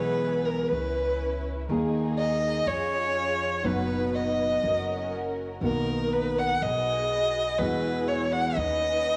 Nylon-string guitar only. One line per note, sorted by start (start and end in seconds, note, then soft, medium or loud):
0.00 0.71 B2 medium
0.00 0.71 E3 medium
0.00 1.22 G#3 medium
0.00 0.72 B3 medium
0.00 0.72 E4 medium
1.69 2.66 D#3 medium
1.69 2.67 A#3 medium
1.69 2.67 D#4 medium
1.69 2.67 G#4 medium
3.64 4.62 B2 medium
3.64 5.13 F#3 medium
3.64 4.63 B3 medium
3.64 4.63 D#4 medium
3.64 5.13 F#4 medium
5.61 6.60 B2 medium
5.61 6.60 D#3 medium
5.61 6.60 A#3 medium
5.61 7.11 B3 medium
5.61 7.11 F#4 medium
7.59 8.56 B2 medium
7.59 8.56 E3 medium
7.59 8.57 G#3 medium
7.59 8.57 B3 medium
7.59 8.57 F#4 medium